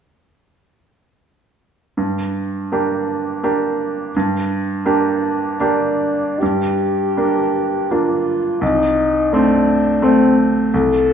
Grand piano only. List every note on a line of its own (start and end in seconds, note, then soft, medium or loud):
1.97 2.69 G2 soft
2.72 3.40 A#3 soft
2.72 3.40 D4 soft
2.72 3.40 G4 soft
3.43 4.10 A#3 soft
3.43 4.10 D4 soft
3.43 4.10 G4 soft
4.16 4.84 G2 soft
4.85 5.55 A#3 soft
4.85 5.56 D4 soft
4.85 5.56 G4 soft
5.60 6.38 A#3 soft
5.60 6.37 D4 soft
5.60 6.38 G4 soft
6.42 7.14 G2 soft
7.17 7.86 A#3 soft
7.17 7.86 D4 soft
7.91 8.58 A#3 soft
7.91 8.58 D4 soft
8.61 9.30 C2 soft
9.33 9.98 A3 soft
9.33 9.98 C4 soft
10.02 10.68 A3 soft
10.02 10.68 C4 soft
10.74 11.13 C2 soft